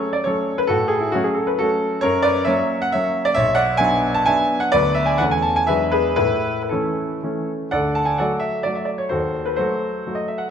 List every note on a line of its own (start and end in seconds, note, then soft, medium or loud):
0.00 0.22 F#3 soft
0.00 0.22 A3 soft
0.00 0.23 C#4 medium
0.00 0.12 A4 medium
0.00 0.14 C#5 medium
0.13 0.25 D5 medium
0.24 0.66 F#3 soft
0.24 0.66 A3 soft
0.24 0.66 C#4 soft
0.24 0.56 A4 medium
0.24 0.58 C#5 medium
0.58 0.69 B4 medium
0.67 1.13 A2 medium
0.67 0.89 F#4 medium
0.67 0.90 A4 medium
0.88 1.01 G#4 medium
1.00 1.13 E4 medium
1.12 1.57 F#3 medium
1.12 1.56 A3 medium
1.12 1.57 C#4 medium
1.12 1.25 F#4 medium
1.24 1.36 G#4 medium
1.35 1.48 A4 medium
1.47 1.59 B4 medium
1.59 2.00 F#3 soft
1.59 2.00 A3 soft
1.59 2.00 C#4 soft
1.59 2.00 F#4 medium
1.59 2.03 A4 medium
2.01 2.47 F#2 medium
2.01 2.23 A#4 medium
2.01 2.24 C#5 loud
2.23 2.46 B4 medium
2.23 2.47 D5 loud
2.45 2.89 F#3 medium
2.45 2.89 A#3 medium
2.45 2.89 C#4 medium
2.45 2.79 C#5 medium
2.45 2.81 E5 medium
2.82 2.93 F#5 loud
2.92 3.33 F#3 soft
2.92 3.33 A#3 soft
2.92 3.33 C#4 soft
2.92 3.24 C#5 medium
2.92 3.25 E5 medium
3.25 3.36 D5 medium
3.34 3.80 B1 medium
3.34 3.56 C#5 medium
3.34 3.57 E5 loud
3.55 3.78 D5 medium
3.55 3.79 F#5 loud
3.77 4.23 F#3 medium
3.77 4.23 B3 medium
3.77 4.24 D4 medium
3.77 4.13 E5 medium
3.77 4.15 G#5 loud
4.14 4.27 A5 loud
4.26 4.69 F#3 soft
4.26 4.69 B3 soft
4.26 4.70 D4 medium
4.26 4.59 E5 medium
4.26 4.61 G#5 loud
4.60 4.72 F#5 medium
4.72 5.19 D2 medium
4.72 5.16 F#3 soft
4.72 5.16 B3 soft
4.72 5.17 D4 soft
4.72 4.94 B4 medium
4.72 4.95 D5 loud
4.95 5.07 E5 loud
5.06 5.19 G#5 medium
5.18 5.68 E2 medium
5.18 5.65 E3 soft
5.18 5.66 A3 soft
5.18 5.66 C#4 soft
5.18 5.31 F#5 loud
5.31 5.44 G#5 medium
5.42 5.56 A5 medium
5.56 5.69 G#5 medium
5.67 6.17 E2 medium
5.67 6.14 F#3 soft
5.67 6.14 G#3 soft
5.67 6.15 D4 soft
5.67 5.90 B4 medium
5.67 5.92 E5 medium
5.91 6.16 G#4 medium
5.91 6.15 B4 medium
6.16 6.69 A2 medium
6.16 6.59 E4 medium
6.16 6.61 B4 loud
6.62 6.71 B4 medium
6.69 7.20 E3 soft
6.69 7.19 A3 soft
6.69 7.20 C#4 medium
6.69 7.44 E4 medium
6.69 7.47 A4 medium
7.23 7.68 E3 soft
7.23 7.68 A3 soft
7.23 7.69 C#4 soft
7.71 8.18 D2 medium
7.71 7.94 A4 medium
7.71 7.94 D5 medium
7.71 7.95 F#5 medium
7.95 8.07 A5 medium
8.05 8.18 G#5 medium
8.18 8.62 F#3 soft
8.18 8.62 A3 soft
8.18 8.62 F#4 soft
8.18 8.41 A4 medium
8.18 8.41 D5 medium
8.18 8.42 F#5 medium
8.40 8.64 E5 medium
8.63 9.06 F#3 soft
8.63 9.06 A3 soft
8.63 9.06 F#4 soft
8.63 8.76 D5 medium
8.75 8.87 E5 medium
8.85 8.98 D5 medium
8.98 9.10 C#5 medium
9.09 9.56 D#2 soft
9.09 9.42 F#4 medium
9.09 9.42 A4 medium
9.09 9.44 C5 medium
9.45 9.57 B4 medium
9.56 10.01 F#3 soft
9.56 10.02 A3 soft
9.56 10.06 F#4 medium
9.56 10.13 A4 medium
9.56 10.16 C5 medium
10.07 10.47 F#3 soft
10.07 10.47 A3 soft
10.07 10.47 F#4 soft
10.15 10.27 D#5 medium
10.28 10.39 E5 medium
10.38 10.50 F#5 medium